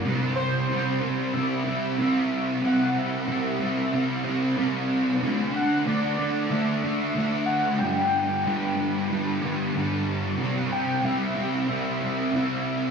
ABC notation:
X:1
M:4/4
L:1/8
Q:1/4=93
K:Clyd
V:1 name="Soft synth lead"
z c2 z e4 | f e6 z | z f d2 e3 f | g3 z4 z |
z g e2 e4 |]
V:2 name="Distorted electric guitar" clef=bass
[C,G,C]2 [C,G,C] [G,C] [C,G,C] [G,C] [C,G,C]2 | [C,G,C]2 [C,G,C] [G,C] [C,G,C] [G,C] [C,G,C]2 | [D,A,D]2 [D,A,D] [A,D] [D,A,D] [A,D] [D,A,D]2 | [G,,D,G,]2 [G,,D,G,] [D,G,] [G,,D,G,] [D,G,] [G,,D,G,]2 |
[C,G,C]2 [C,G,C] [G,C] [C,G,C] [G,C] [C,G,C]2 |]